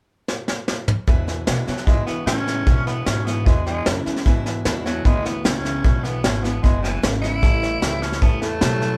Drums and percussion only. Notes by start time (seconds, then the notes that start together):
0.28 snare
0.48 snare
0.68 snare
0.88 mid tom
1.07 kick, snare
1.28 snare
1.47 snare, hi-hat pedal
1.67 snare
1.77 snare
1.87 kick, snare
2.07 snare
2.27 snare, hi-hat pedal
2.47 snare
2.67 kick, snare
2.87 snare
3.06 snare, hi-hat pedal
3.27 snare
3.46 kick, snare
3.67 snare
3.86 snare, hi-hat pedal
4.06 snare
4.16 snare
4.26 kick, snare
4.46 snare
4.65 snare, hi-hat pedal
4.86 snare
5.05 kick, snare
5.25 snare
5.45 snare, hi-hat pedal
5.65 snare
5.84 kick, snare
6.04 snare
6.24 snare, hi-hat pedal
6.44 snare
6.64 kick, snare
6.84 snare
7.03 snare, hi-hat pedal
7.23 snare
7.43 kick, snare
7.63 snare
7.82 snare, hi-hat pedal
8.02 snare
8.12 snare
8.22 kick, snare
8.42 snare
8.61 snare, hi-hat pedal
8.82 snare